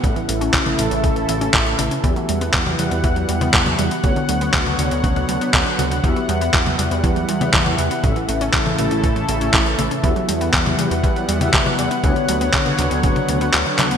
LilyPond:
<<
  \new Staff \with { instrumentName = "Analog polysynth" } { \time 4/4 \key e \dorian \tempo 4 = 120 <a, cis' e' a' e''>2~ <a, cis' e' a' e''>8. <a, cis' e' a' e''>4~ <a, cis' e' a' e''>16 | <e b fis' g' e''>2~ <e b fis' g' e''>8. <e b fis' g' e''>4~ <e b fis' g' e''>16 | <d b d' fis' cis''>2~ <d b d' fis' cis''>8. <d b d' fis' cis''>4~ <d b d' fis' cis''>16 | <e b fis' g' e''>2~ <e b fis' g' e''>8. <e b fis' g' e''>4~ <e b fis' g' e''>16 |
<a, cis' e' a' e''>2~ <a, cis' e' a' e''>8. <a, cis' e' a' e''>4~ <a, cis' e' a' e''>16 | <e b fis' g' e''>2~ <e b fis' g' e''>8. <e b fis' g' e''>4~ <e b fis' g' e''>16 | <d b d' fis' cis''>2~ <d b d' fis' cis''>8. r8 <d b d' fis' cis''>8. | }
  \new Staff \with { instrumentName = "Analog synth pad" } { \time 4/4 \key e \dorian << { <cis e e' a'>1 | <g fis''>1 | <d fis cis''>1 | <e g>1 |
<cis e' a'>1 | <g fis''>1 | <d fis cis''>1 | } \\ { a1 | b1~ | b1~ | b1 |
a1 | b1~ | b1 | } >> }
  \new Staff \with { instrumentName = "Synth arpeggio sound" } { \clef bass \time 4/4 \key e \dorian cis16 e16 a16 cis'16 cis16 e16 a16 cis'16 cis16 e16 a16 cis'16 cis16 e16 a16 cis'16 | e16 fis16 g16 b16 e16 fis16 g16 b16 e16 fis16 g16 b16 e16 fis16 g16 b16 | cis16 d16 fis16 b16 cis16 d16 fis16 b16 cis16 d16 fis16 b16 cis16 d16 fis16 b16 | e16 fis16 g16 b16 e16 fis16 g16 b16 e16 fis16 g16 b16 e16 fis16 g16 b16 |
cis16 e16 a16 cis'16 cis16 e16 a16 cis'16 cis16 e16 a16 cis'16 cis16 e16 a16 cis'16 | e16 fis16 g16 b16 e16 fis16 g16 b16 e16 fis16 g16 b16 e16 fis16 g16 b16 | cis16 d16 fis16 b16 cis16 d16 fis16 b16 cis16 d16 fis16 b16 cis16 d16 fis16 b16 | }
  \new Staff \with { instrumentName = "Analog synth bass" } { \clef bass \time 4/4 \key e \dorian a,,16 r16 a,,8 a,,8 a,,16 a,,16 a,,8 a,,8 a,,8 a,,16 r16 | e,16 r16 e,8 e,8 e,16 e,16 e,8 e,8 e,8 e,16 r16 | d,16 r16 d,8 d,8 d,16 d,16 d,8 d,16 r16 d,16 r16 d,8 | e,16 r16 e,8 e,8 e,16 e,16 e,8 e,8 e,8 e,16 r16 |
a,,16 r16 a,,8 a,,8 a,,16 a,,16 a,,8 a,,8 a,,8 a,,16 r16 | e,16 r16 e,8 e,8 e,16 e,16 e,8 e,8 e,8 e,16 r16 | d,16 r16 d,8 d,8 d,16 d,16 d,,16 r16 d,8 d,16 r16 d,8 | }
  \new DrumStaff \with { instrumentName = "Drums" } \drummode { \time 4/4 <hh bd>16 hh16 hh16 hh16 <hc hh bd>16 <hh tommh>16 hh16 hh16 <hh bd>16 hh16 hh16 hh16 <hc hh bd>16 hh16 <hh tommh>16 hh16 | <hh bd>16 hh16 hh16 hh16 <hc hh bd>16 <hh tommh>16 hh16 hh16 <hh bd>16 hh16 hh16 <hh tommh>16 <hc hh bd>16 <hh tommh>16 hh16 hh16 | <hh bd>16 hh16 hh16 hh16 <hc hh bd>16 <hh tommh>16 hh16 hh16 <hh bd>16 <hh tommh>16 hh16 hh16 <hc hh bd>16 hh16 <hh tommh>16 hh16 | <hh bd>16 hh16 hh16 hh16 <hc hh bd>16 <hh tommh>16 hh16 hh16 <hh bd>16 hh16 hh16 <hh tommh>16 <hc hh bd>16 <hh tommh>16 hh16 hh16 |
<hh bd>16 hh16 hh16 hh16 <hc hh bd>16 <hh tommh>16 hh16 hh16 <hh bd>16 hh16 hh16 hh16 <hc hh bd>16 hh16 <hh tommh>16 hh16 | <hh bd>16 hh16 hh16 hh16 <hc hh bd>16 <hh tommh>16 hh16 hh16 <hh bd>16 hh16 hh16 <hh tommh>16 <hc hh bd>16 <hh tommh>16 hh16 hh16 | <hh bd>16 hh16 hh16 hh16 <hc hh bd>16 <hh tommh>16 <hc hh>16 hh16 <hh bd>16 <hh tommh>16 hh16 hh16 <hc hh>16 hh16 <hc hh tommh>16 hh16 | }
>>